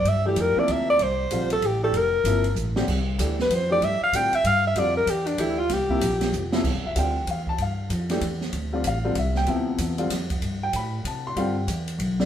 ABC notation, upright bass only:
X:1
M:3/4
L:1/8
Q:"Swing" 1/4=191
K:Cmix
V:1 name="Upright bass" clef=bass
G,,2 F,, z D,,2 | C,,2 B,,,2 A,,,2 | F,,,2 G,,,2 A,,,2 | C,,2 D,,2 F,,2 |
G,, z A,, z G,,2 | F,,2 E,,2 D,,2 | C,,2 B,,,2 F,,,2 | [K:Gmix] (3C,, G,,, F,,, D,,2 E,,2 |
G,,2 F,,2 E,,2 | D,,2 A,,,2 C,,2 | D,,2 E,,2 F,,2 | G,,2 A,,2 C,2 |
G,,2 E,,2 B,,,2 |]